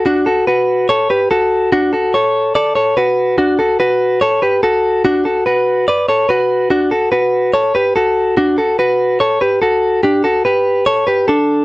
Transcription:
\new Staff \with { instrumentName = "Clean electric guitar" } { \time 4/4 \key d \major \tempo 4 = 144 <d' fis'>8 <fis' a'>8 <fis' b'>4 <a' cis''>8 <g' b'>8 <fis' a'>4 | <d' fis'>8 <fis' a'>8 <a' cis''>4 <a' d''>8 <a' cis''>8 <fis' b'>4 | <d' fis'>8 <fis' a'>8 <fis' b'>4 <a' cis''>8 <g' b'>8 <fis' a'>4 | <d' fis'>8 <fis' a'>8 <fis' b'>4 <b' d''>8 <a' cis''>8 <fis' b'>4 |
<d' fis'>8 <fis' a'>8 <fis' b'>4 <a' cis''>8 <g' b'>8 <fis' a'>4 | <d' fis'>8 <fis' a'>8 <fis' b'>4 <a' cis''>8 <g' b'>8 <fis' a'>4 | <d' g'>8 <fis' a'>8 <g' b'>4 <a' cis''>8 <g' b'>8 <d' a'>4 | }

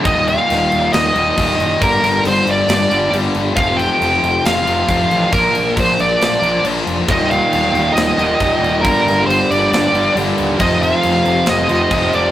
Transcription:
<<
  \new Staff \with { instrumentName = "Lead electric guitar" } { \time 4/4 \key ees \lydian \tempo 4 = 137 ees''8 f''4. ees''2 | bes'4 c''8 d''8 d''4 r4 | f''8 g''4. f''2 | bes'4 c''8 d''8 d''4 r4 |
ees''8 f''4. ees''2 | bes'4 c''8 d''8 d''4 r4 | ees''8 f''4. ees''4. d''8 | }
  \new Staff \with { instrumentName = "Distorted electric guitar" } { \clef bass \time 4/4 \key ees \lydian <ees, bes, ees g g'>2~ <ees, bes, ees g g'>8 <ees, bes, ees g g'>8 <ees, bes, ees g g'>4 | <g, d g bes d' g'>2~ <g, d g bes d' g'>8 <g, d g bes d' g'>8 <g, d g bes d' g'>4 | <f, c f a c' f'>2~ <f, c f a c' f'>8 <f, c f a c' f'>8 <f, c f a c' f'>4 | <bes, f bes d' f' bes'>2~ <bes, f bes d' f' bes'>8 <bes, f bes d' f' bes'>8 <bes, f bes d' f' bes'>4 |
<ees, bes, ees g g'>2~ <ees, bes, ees g g'>8 <ees, bes, ees g g'>8 <ees, bes, ees g g'>4 | <g, d g bes d' g'>2~ <g, d g bes d' g'>8 <g, d g bes d' g'>8 <g, d g bes d' g'>4 | <f, c f a c' f'>2~ <f, c f a c' f'>8 <f, c f a c' f'>8 <f, c f a c' f'>4 | }
  \new Staff \with { instrumentName = "Distorted electric guitar" } { \clef bass \time 4/4 \key ees \lydian <ees, bes, ees>2~ <ees, bes, ees>8 <ees, bes, ees>8 <ees, bes, ees>4 | <g, d g>2~ <g, d g>8 <g, d g>8 <g, d g>4 | <f, c f>2~ <f, c f>8 <f, c f>8 <f, c f>4 | <bes, f bes>2~ <bes, f bes>8 <bes, f bes>8 <bes, f bes>4 |
<ees, bes, ees>2~ <ees, bes, ees>8 <ees, bes, ees>8 <ees, bes, ees>4 | <g, d g>2~ <g, d g>8 <g, d g>8 <g, d g>4 | <f, c f>2~ <f, c f>8 <f, c f>8 <f, c f>4 | }
  \new Staff \with { instrumentName = "Distorted electric guitar" } { \clef bass \time 4/4 \key ees \lydian r1 | r1 | r1 | r1 |
<ees, bes, ees>2~ <ees, bes, ees>8 <ees, bes, ees>8 <ees, bes, ees>4 | <g, d g>2~ <g, d g>8 <g, d g>8 <g, d g>4 | <f, c f>2~ <f, c f>8 <f, c f>8 <f, c f>4 | }
  \new Staff \with { instrumentName = "Picked electric bass" } { \clef bass \time 4/4 \key ees \lydian ees,,4 ees,,8 ees,,8 ees,,8 ees,,8 ees,,8 fis,,8 | g,,8 g,,8 g,,8 g,,8 g,,8 g,,8 g,,8 g,,8 | f,,4 f,,8 f,,8 f,,8 f,,8 f,,8 a,,8 | bes,,8 bes,,8 bes,,8 bes,,8 bes,,8 bes,,8 bes,,8 f,,8 |
ees,,4 ees,,8 ees,,8 ees,,8 ees,,8 ees,,8 ees,,8 | g,,8 g,,8 g,,8 g,,8 g,,8 g,,8 g,,8 ees,,8 | f,,4 f,,8 f,,8 f,,8 f,,8 f,,8 f,,8 | }
  \new DrumStaff \with { instrumentName = "Drums" } \drummode { \time 4/4 <cymc bd>8 cymc8 <cymc sn>8 cymc8 <cymc sn>8 cymc8 <cymc bd>8 cymc8 | <cymc bd>8 <cymc sn>8 cymc8 cymc8 <cymc sn>8 cymc8 cymc8 cymc8 | <cymc bd>8 cymc8 cymc8 cymc8 <cymc sn>8 cymc8 <cymc bd>8 cymc8 | <cymc bd>8 cymc8 <cymc bd>8 cymc8 <cymc sn>8 cymc8 cymc8 cymc8 |
<cymc bd>8 cymc8 cymc8 cymc8 <cymc sn>8 cymc8 <cymc bd>8 cymc8 | <cymc bd>8 <cymc sn>8 cymc8 cymc8 <cymc sn>8 cymc8 cymc8 cymc8 | <cymc bd>8 cymc8 cymc8 cymc8 <cymc sn>8 cymc8 <cymc bd>8 cymc8 | }
>>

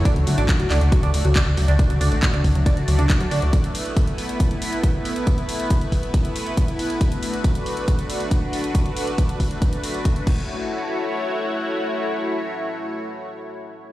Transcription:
<<
  \new Staff \with { instrumentName = "Analog synth pad" } { \time 4/4 \key fis \minor \tempo 4 = 138 <a d' fis' d''>8 <a d' fis' d''>8 <a d' fis' d''>16 <a d' fis' d''>8 <a d' fis' d''>16 <a d' fis' d''>8 <a d' fis' d''>8 <a d' fis' d''>16 <a d' fis' d''>8 <a d' fis' d''>16 | <a d' fis' d''>8 <a d' fis' d''>8 <a d' fis' d''>16 <a d' fis' d''>8 <a d' fis' d''>16 <a d' fis' d''>8 <a d' fis' d''>8 <a d' fis' d''>16 <a d' fis' d''>8 <a d' fis' d''>16 | <a b e' b'>8 <a b e' b'>8 <a b e' b'>16 <a b e' b'>8 <a b e' b'>16 <a b e' b'>8 <a b e' b'>8 <a b e' b'>16 <a b e' b'>8 <a b e' b'>16 | <a b e' b'>8 <a b e' b'>8 <a b e' b'>16 <a b e' b'>8 <a b e' b'>16 <a b e' b'>8 <a b e' b'>8 <a b e' b'>16 <a b e' b'>8 <a b e' b'>16 |
<a d' fis' b'>8 <a d' fis' b'>8 <a d' fis' b'>16 <a d' fis' b'>8 <a d' fis' b'>16 <a d' fis' b'>8 <a d' fis' b'>8 <a d' fis' b'>16 <a d' fis' b'>8 <a d' fis' b'>16 | <a d' fis' b'>8 <a d' fis' b'>8 <a d' fis' b'>16 <a d' fis' b'>8 <a d' fis' b'>16 <a d' fis' b'>8 <a d' fis' b'>8 <a d' fis' b'>16 <a d' fis' b'>16 <a e' fis' cis''>8~ | <a e' fis' cis''>1~ | <a e' fis' cis''>1 | }
  \new Staff \with { instrumentName = "Synth arpeggio sound" } { \time 4/4 \key fis \minor d'16 r16 fis16 d'16 r16 fis16 d'16 r16 fis16 d'16 r16 fis16 d'16 r16 fis16 d'16 | r16 fis16 d'16 r16 fis16 d'16 r16 fis16 d'16 r16 fis16 d'16 r16 fis16 d'16 r16 | r1 | r1 |
r1 | r1 | r1 | r1 | }
  \new Staff \with { instrumentName = "Analog synth bass" } { \clef bass \time 4/4 \key fis \minor r16 d,16 d,16 a,,16 r16 d,16 d,16 d,16 r16 d,16 d,16 d,16 r16 d,16 d,16 d,16 | r16 d,16 d,16 a,,16 r16 d,16 d,16 d,16 r16 d,16 d,16 d,16 r16 d,16 d,16 d,16 | r1 | r1 |
r1 | r1 | r1 | r1 | }
  \new DrumStaff \with { instrumentName = "Drums" } \drummode { \time 4/4 <hh bd>16 hh16 hho16 hh16 <hc hh bd>16 hh16 <hc hho>16 hh16 <hh bd>16 hh16 hho16 hh16 <hc hh bd>8 hho16 hh16 | <hh bd>16 hh16 hho16 hh16 <hc hh bd>16 hh16 <hho bd>16 hh16 <hh bd>16 hh16 hho16 hh16 <hc hh bd>16 hh16 hho16 hh16 | <hh bd>16 hh16 hho8 <hh bd>16 hh16 hho16 hh16 <hh bd>16 hh16 hho16 hh16 <hh bd>8 hho16 hh16 | <hh bd>16 hh16 hho16 hh16 <hh bd>16 hh16 <hho bd>16 hh16 <hh bd>16 hh16 hho16 hh16 <hh bd>16 hh16 hho16 hh16 |
<hh bd>16 hh16 hho16 hh16 <hh bd>16 hh16 hho16 hh16 <hh bd>16 hh16 hho16 hh16 <hh bd>8 hho16 hh16 | <hh bd>16 hh16 hho16 hh16 <hh bd>16 hh16 <hho bd>16 hh16 <hh bd>16 hh16 hho16 hh16 <hh bd>16 hh16 <cymc bd>8 | r4 r4 r4 r4 | r4 r4 r4 r4 | }
>>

